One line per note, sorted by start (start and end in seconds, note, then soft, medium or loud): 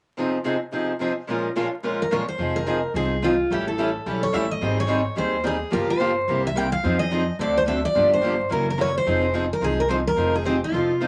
0.18 0.36 C3 medium
0.18 0.36 F3 medium
0.18 0.37 C4 medium
0.18 0.37 D#4 medium
0.18 0.37 G#4 medium
0.45 0.55 C3 medium
0.45 0.55 F3 medium
0.45 0.56 C4 medium
0.45 0.56 D#4 medium
0.45 0.56 G#4 medium
0.73 0.92 C3 medium
0.73 0.92 F3 medium
0.73 0.92 C4 medium
0.73 0.92 D#4 medium
0.73 0.92 G#4 medium
1.01 1.11 C3 medium
1.01 1.11 F3 medium
1.01 1.12 C4 medium
1.01 1.11 D#4 medium
1.01 1.12 G#4 medium
1.30 1.48 A#2 medium
1.30 1.48 F3 medium
1.30 1.48 G#3 medium
1.30 1.48 C#4 medium
1.30 1.48 F4 medium
1.30 1.48 A#4 medium
1.56 1.67 A#2 medium
1.56 1.67 F3 medium
1.56 1.67 G#3 medium
1.56 1.67 C#4 medium
1.56 1.67 F4 medium
1.56 1.67 A#4 medium
1.83 2.02 A#2 medium
1.83 2.02 F3 medium
1.83 2.02 G#3 medium
1.83 2.03 C#4 medium
1.83 2.03 F4 medium
1.83 2.03 A#4 medium
2.02 2.13 A#4 medium
2.11 2.22 A#2 medium
2.11 2.22 F3 medium
2.11 2.22 G#3 medium
2.11 2.22 C#4 medium
2.11 2.22 F4 medium
2.11 2.22 A#4 medium
2.11 2.28 C#5 medium
2.28 2.57 C5 medium
2.38 2.83 F1 medium
2.38 2.54 F3 medium
2.38 2.54 C4 medium
2.38 2.54 D#4 medium
2.38 2.54 G#4 medium
2.56 2.65 C4 soft
2.56 2.66 D#4 soft
2.56 2.67 G#4 medium
2.56 2.92 A#4 medium
2.66 2.77 F3 medium
2.66 2.77 C4 medium
2.66 2.77 D#4 medium
2.66 2.78 G#4 medium
2.94 3.39 C2 medium
2.94 3.14 F3 medium
2.94 3.14 C4 medium
2.94 3.14 D#4 medium
2.94 3.14 G#4 medium
2.94 3.24 G#4 medium
3.22 3.33 F3 medium
3.22 3.33 C4 medium
3.22 3.33 D#4 medium
3.22 3.52 F4 medium
3.22 3.33 G#4 medium
3.50 3.95 A1 medium
3.50 3.66 E3 medium
3.50 3.66 G3 medium
3.50 3.66 C#4 medium
3.50 3.66 E4 medium
3.50 3.66 G4 medium
3.50 3.66 A4 medium
3.67 3.78 C#4 soft
3.67 3.79 E4 soft
3.67 3.78 A4 soft
3.67 4.24 A4 medium
3.79 3.89 E3 medium
3.79 3.89 G3 medium
3.79 3.89 C#4 medium
3.79 3.89 E4 medium
3.79 3.89 A4 medium
4.06 4.29 B1 medium
4.06 4.25 E3 medium
4.06 4.25 G3 medium
4.06 4.25 C#4 medium
4.06 4.25 E4 medium
4.06 4.25 A4 medium
4.23 4.34 C#5 medium
4.33 4.57 A1 medium
4.33 4.44 E3 medium
4.33 4.44 G3 medium
4.33 4.45 C#4 medium
4.33 4.45 E4 medium
4.33 4.45 A4 medium
4.33 4.50 E5 medium
4.51 4.79 D#5 medium
4.62 5.06 G#1 medium
4.62 4.77 D#3 medium
4.62 4.78 G3 medium
4.62 4.78 C4 medium
4.62 4.77 D#4 medium
4.62 4.76 G#4 medium
4.77 4.88 C4 soft
4.77 4.88 D#4 soft
4.77 4.88 G#4 medium
4.77 5.15 C#5 medium
4.88 4.99 D#3 medium
4.88 4.99 G3 medium
4.88 5.00 C4 medium
4.88 5.00 D#4 medium
4.88 5.00 G#4 medium
5.16 5.61 D#2 medium
5.16 5.35 D#3 medium
5.16 5.36 G3 medium
5.16 5.36 C4 medium
5.16 5.36 D#4 medium
5.16 5.36 G#4 medium
5.16 5.43 C5 medium
5.43 5.55 D#3 medium
5.43 5.55 G3 medium
5.43 5.55 C4 medium
5.43 5.55 D#4 medium
5.43 5.55 G#4 medium
5.43 5.71 G#4 medium
5.72 6.16 G1 medium
5.72 5.88 C#3 medium
5.72 5.88 F3 medium
5.72 5.88 A#3 medium
5.72 5.88 F4 medium
5.72 5.87 G4 medium
5.72 5.88 A#4 medium
5.88 5.99 A#3 soft
5.88 5.99 F4 soft
5.88 6.00 G4 medium
5.88 6.41 C5 medium
6.00 6.10 C#3 medium
6.00 6.10 F3 medium
6.00 6.11 A#3 medium
6.00 6.11 F4 medium
6.00 6.11 G4 medium
6.28 6.72 C2 medium
6.28 6.47 C3 medium
6.28 6.47 G3 medium
6.28 6.47 A#3 medium
6.28 6.47 E4 medium
6.28 6.47 G4 medium
6.47 6.57 E5 medium
6.56 6.66 C3 medium
6.56 6.66 G3 medium
6.56 6.67 A#3 medium
6.56 6.66 E4 medium
6.56 6.67 G4 medium
6.56 6.72 G5 medium
6.72 6.99 F5 medium
6.83 7.28 F2 medium
6.83 6.99 F3 medium
6.83 6.99 C4 medium
6.83 6.99 D#4 medium
6.83 6.99 G#4 medium
6.99 7.10 C4 soft
6.99 7.10 D#4 soft
6.99 7.11 G#4 soft
6.99 7.36 D#5 medium
7.11 7.21 F3 medium
7.11 7.22 C4 medium
7.11 7.22 D#4 medium
7.11 7.22 G#4 medium
7.39 7.83 D2 medium
7.39 7.58 D3 medium
7.39 7.58 A3 medium
7.39 7.58 C4 medium
7.39 7.58 F#4 medium
7.39 7.58 A4 medium
7.39 7.56 D5 medium
7.57 7.62 C5 medium
7.65 7.76 D3 medium
7.65 7.77 A3 medium
7.65 7.77 C4 medium
7.65 7.77 F#4 medium
7.65 7.77 A4 medium
7.65 7.84 E5 medium
7.85 8.10 D5 loud
7.95 8.39 G1 medium
7.95 8.10 D3 medium
7.95 8.10 F3 medium
7.95 8.10 A#3 medium
7.95 8.10 D4 medium
7.95 8.09 G4 medium
8.10 8.21 A#3 soft
8.10 8.21 D4 soft
8.10 8.20 G4 soft
8.10 8.52 C5 medium
8.21 8.32 D3 medium
8.21 8.32 F3 medium
8.21 8.33 A#3 medium
8.21 8.32 D4 medium
8.21 8.32 G4 medium
8.49 8.95 F#1 medium
8.49 8.68 C#3 medium
8.49 8.69 E3 medium
8.49 8.69 F#3 medium
8.49 8.69 A#3 medium
8.49 8.69 C#4 medium
8.49 8.69 E4 medium
8.49 8.69 F#4 medium
8.49 8.69 A#4 medium
8.49 8.66 A#4 medium
8.70 8.80 A#4 medium
8.78 8.88 C#3 medium
8.78 8.88 E3 medium
8.78 8.88 F#3 medium
8.78 8.89 A#3 medium
8.78 8.89 C#4 medium
8.78 8.89 E4 medium
8.78 8.89 F#4 medium
8.78 8.89 A#4 medium
8.78 8.96 C#5 medium
8.98 9.32 C5 medium
9.06 9.50 F1 medium
9.06 9.21 F3 medium
9.06 9.21 C4 medium
9.06 9.21 D#4 medium
9.06 9.20 G#4 medium
9.22 9.33 C4 soft
9.22 9.33 D#4 medium
9.22 9.33 G#4 medium
9.34 9.44 F3 medium
9.34 9.44 C4 medium
9.34 9.44 D#4 medium
9.34 9.44 G#4 medium
9.53 9.63 A#4 medium
9.61 10.05 C2 medium
9.61 9.80 F3 medium
9.61 9.80 C4 medium
9.61 9.80 D#4 medium
9.61 9.80 G#4 medium
9.61 9.79 G#4 medium
9.80 9.89 A#4 medium
9.88 9.99 F3 medium
9.88 9.99 C4 medium
9.88 9.99 D#4 medium
9.88 10.00 G#4 medium
9.88 9.96 C5 medium
10.07 10.34 A#4 medium
10.16 10.60 F1 medium
10.16 10.32 F3 medium
10.16 10.32 C4 medium
10.16 10.33 D#4 medium
10.16 10.32 G#4 medium
10.33 10.44 C4 soft
10.33 10.44 D#4 soft
10.33 10.44 G#4 medium
10.33 10.45 G#4 medium
10.45 10.55 F3 medium
10.45 10.55 C4 medium
10.45 10.55 D#4 medium
10.45 10.60 G4 medium
10.45 10.55 G#4 medium
10.64 11.07 F4 medium
10.72 11.07 F1 medium
10.72 10.91 F3 medium
10.72 10.92 C4 medium
10.72 10.92 D#4 medium
10.72 10.92 A4 medium
11.00 11.07 F3 medium
11.00 11.07 C4 medium
11.00 11.07 D#4 medium
11.00 11.07 A4 medium